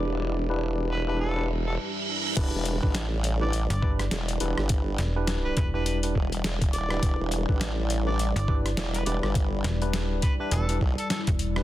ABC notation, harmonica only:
X:1
M:4/4
L:1/16
Q:"Swing 16ths" 1/4=103
K:Em
V:1 name="Harmonica"
z6 B B A2 z A z4 | z6 z d2 d2 z4 z | z4 z B B B B z4 z d2- | d z6 d2 d2 z2 B d d |
z6 B B A2 z A A z3 |]